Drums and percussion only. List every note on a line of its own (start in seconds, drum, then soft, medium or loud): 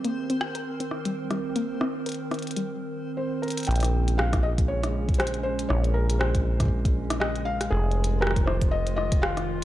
0.05 closed hi-hat medium
0.30 closed hi-hat soft
0.41 cross-stick medium
0.55 closed hi-hat medium
0.80 closed hi-hat soft
0.91 cross-stick soft
1.05 closed hi-hat medium
1.31 cross-stick soft
1.31 closed hi-hat soft
1.56 closed hi-hat medium
1.81 cross-stick medium
2.06 closed hi-hat medium
2.09 closed hi-hat soft
2.12 closed hi-hat soft
2.31 cross-stick medium
2.31 closed hi-hat soft
2.34 closed hi-hat soft
2.39 closed hi-hat soft
2.42 closed hi-hat soft
2.47 closed hi-hat soft
2.51 closed hi-hat soft
2.56 closed hi-hat medium
3.43 closed hi-hat soft
3.48 closed hi-hat soft
3.50 closed hi-hat medium
3.50 closed hi-hat soft
3.57 closed hi-hat medium
3.60 closed hi-hat soft
3.63 closed hi-hat soft
3.65 closed hi-hat soft
3.67 closed hi-hat soft
3.71 closed hi-hat medium
3.76 closed hi-hat medium
3.80 cross-stick medium
3.80 closed hi-hat medium
3.83 closed hi-hat soft
3.84 closed hi-hat medium
4.08 closed hi-hat medium
4.19 cross-stick loud
4.33 kick loud
4.33 cross-stick medium
4.33 closed hi-hat medium
4.58 kick loud
4.58 closed hi-hat medium
4.84 cross-stick medium
4.84 closed hi-hat medium
5.09 kick loud
5.09 closed hi-hat soft
5.14 closed hi-hat soft
5.20 cross-stick loud
5.20 closed hi-hat soft
5.27 closed hi-hat medium
5.34 closed hi-hat soft
5.59 closed hi-hat medium
5.70 cross-stick medium
5.84 closed hi-hat soft
6.10 closed hi-hat medium
6.21 cross-stick loud
6.35 kick loud
6.35 closed hi-hat medium
6.60 kick loud
6.60 cross-stick medium
6.60 closed hi-hat medium
6.63 kick medium
6.65 kick medium
6.68 kick medium
6.85 kick loud
6.85 closed hi-hat medium
7.10 cross-stick medium
7.10 closed hi-hat medium
7.21 cross-stick loud
7.36 closed hi-hat soft
7.61 cross-stick medium
7.61 closed hi-hat medium
7.92 closed hi-hat soft
8.04 closed hi-hat medium
8.22 cross-stick loud
8.27 cross-stick loud
8.31 cross-stick medium
8.36 kick loud
8.36 closed hi-hat medium
8.47 cross-stick medium
8.62 kick loud
8.62 closed hi-hat medium
8.87 closed hi-hat medium
8.98 cross-stick medium
9.12 kick loud
9.12 closed hi-hat medium
9.23 cross-stick loud
9.37 cross-stick medium
9.37 closed hi-hat soft